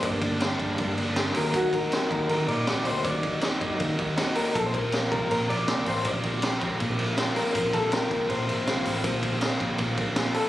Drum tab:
RD |xxxxxxxx|xxxxxxxx|xxxxxxxx|xxxxxxxx|
HH |p------o|p------o|p------o|p------o|
SD |--oo--o-|--o---o-|--o---o-|--o---o-|
BD |oo-oo---|oo-o----|oo-ooo--|oo-o----|

RD |xxxxxxxx|xxxxxxxx|xxxxxxxx|
HH |p------o|p------o|p------o|
SD |--oo--o-|--oo--o-|--o---o-|
BD |oo-oo---|oo-o----|oo-ooo--|